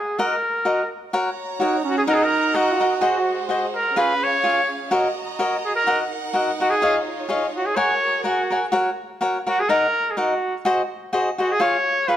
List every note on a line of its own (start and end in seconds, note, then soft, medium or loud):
0.00 0.21 G#4 medium
0.18 0.34 F#4 medium
0.18 0.34 A#4 medium
0.18 0.92 A#4 medium
0.18 0.34 D#5 medium
0.18 0.35 F#5 medium
0.65 0.81 F#4 medium
0.65 0.81 A#4 medium
0.65 0.81 D#5 medium
0.65 0.82 F#5 medium
1.13 1.29 F#4 medium
1.13 3.93 F#4 medium
1.13 1.29 A#4 medium
1.13 1.29 C#5 medium
1.13 2.07 C#5 medium
1.13 1.29 F#5 medium
1.13 2.06 A#5 medium
1.60 1.84 D#4 medium
1.60 1.76 F#4 medium
1.60 1.76 A#4 medium
1.60 1.76 C#5 medium
1.60 1.77 F#5 medium
1.84 2.05 C#4 medium
1.84 1.97 F#4 medium
1.98 2.02 G#4 medium
2.07 2.23 D#4 medium
2.07 2.73 D#4 medium
2.07 2.23 A#4 medium
2.07 2.15 A#4 medium
2.07 3.00 D#5 medium
2.07 2.23 D#5 medium
2.07 2.23 F#5 medium
2.07 3.00 A#5 medium
2.14 2.25 G#4 medium
2.24 2.57 A#4 medium
2.54 2.70 D#4 medium
2.54 2.91 F#4 medium
2.54 2.70 A#4 medium
2.54 2.70 D#5 medium
2.54 2.71 F#5 medium
2.72 2.81 F4 medium
2.79 2.93 D#4 medium
2.79 3.48 F#4 medium
2.79 2.93 A#4 soft
2.79 2.93 D#5 medium
2.79 2.94 F#5 medium
3.00 3.94 G#3 medium
3.00 3.17 F#4 medium
3.00 3.45 F#4 medium
3.00 3.17 G#4 medium
3.00 3.94 C5 medium
3.00 3.17 C5 medium
3.00 3.17 D#5 medium
3.49 3.64 F#4 medium
3.49 3.65 G#4 medium
3.49 3.65 C5 medium
3.49 3.65 D#5 medium
3.75 3.99 A#4 medium
3.95 4.91 C#4 medium
3.95 4.12 F4 medium
3.95 4.90 G#4 medium
3.95 4.12 G#4 medium
3.95 4.25 B4 medium
3.95 4.12 C#5 medium
3.95 4.90 F5 medium
3.95 4.12 F5 medium
4.23 4.71 C#5 medium
4.43 4.59 F4 medium
4.43 4.60 G#4 soft
4.43 4.60 C#5 medium
4.43 4.61 F5 medium
4.91 5.07 F#4 medium
4.91 5.86 F#4 medium
4.91 5.07 A#4 medium
4.91 5.07 C#5 medium
4.91 5.86 D#5 medium
4.91 5.08 D#5 medium
4.91 5.86 A#5 medium
5.39 5.55 F#4 medium
5.39 5.55 A#4 medium
5.39 5.55 C#5 medium
5.39 5.56 D#5 medium
5.65 5.75 G#4 medium
5.75 5.98 A#4 medium
5.85 7.75 D#4 medium
5.85 6.03 F#4 medium
5.85 6.81 A#4 medium
5.85 6.03 A#4 medium
5.85 6.03 D#5 medium
5.85 6.81 F#5 medium
5.85 6.03 F#5 medium
6.33 6.50 F#4 medium
6.33 6.50 A#4 medium
6.33 6.51 D#5 medium
6.33 6.51 F#5 medium
6.60 6.73 F#4 medium
6.60 6.72 F#4 medium
6.60 6.74 A#4 medium
6.60 6.74 D#5 medium
6.60 6.74 F#5 medium
6.70 6.95 G#4 medium
6.81 7.76 F4 medium
6.81 6.98 G#4 medium
6.81 7.76 C#5 medium
6.81 6.98 C#5 medium
6.81 6.98 D#5 medium
6.81 6.98 F5 medium
7.29 7.45 G#4 medium
7.29 7.45 C#5 medium
7.29 7.46 D#5 medium
7.29 7.46 F5 medium
7.57 7.67 F#4 medium
7.66 7.78 G#4 medium
7.76 8.72 F#4 medium
7.76 8.72 G#4 medium
7.76 7.93 A#4 medium
7.76 8.72 A#4 medium
7.76 8.23 C#5 loud
7.76 7.93 C#5 medium
7.76 7.93 F#5 medium
7.76 7.93 G#5 medium
8.24 8.59 F#4 medium
8.24 8.40 A#4 soft
8.24 8.41 C#5 medium
8.24 8.41 F#5 medium
8.24 8.41 G#5 medium
8.50 8.64 A#4 soft
8.50 8.65 C#5 medium
8.50 8.65 F#5 medium
8.50 8.65 G#5 medium
8.72 8.89 F#4 medium
8.72 8.89 A#4 medium
8.72 8.89 C#5 medium
8.72 8.89 F#5 medium
9.21 9.37 F#4 medium
9.21 9.37 A#4 medium
9.21 9.38 C#5 medium
9.21 9.38 F#5 medium
9.46 9.60 F#4 soft
9.46 9.61 F#4 medium
9.46 9.60 A#4 medium
9.46 9.61 C#5 soft
9.46 9.61 F#5 medium
9.60 9.70 G#4 medium
9.69 9.85 D#4 medium
9.69 10.12 A#4 medium
9.69 9.85 A#4 medium
9.69 9.86 D#5 medium
9.69 9.86 F#5 medium
10.11 10.19 G#4 soft
10.17 10.33 D#4 medium
10.17 10.54 F#4 medium
10.17 10.33 A#4 medium
10.17 10.33 D#5 medium
10.17 10.34 F#5 medium
10.65 10.81 F#4 medium
10.65 10.81 G#4 medium
10.65 10.81 C5 medium
10.65 10.81 D#5 medium
11.13 11.28 F#4 medium
11.13 11.28 G#4 medium
11.13 11.29 C5 medium
11.13 11.29 D#5 medium
11.38 11.52 F#4 soft
11.38 11.53 F#4 medium
11.38 11.52 G#4 soft
11.38 11.52 C5 medium
11.38 11.53 D#5 medium
11.51 11.63 G#4 medium
11.60 11.76 F4 medium
11.60 11.76 G#4 medium
11.60 11.76 C#5 medium
11.60 12.09 C#5 medium
11.60 11.77 F5 medium
12.08 12.17 F4 soft
12.08 12.17 G#4 soft
12.08 12.17 B4 medium
12.08 12.17 C#5 medium
12.08 12.17 F5 medium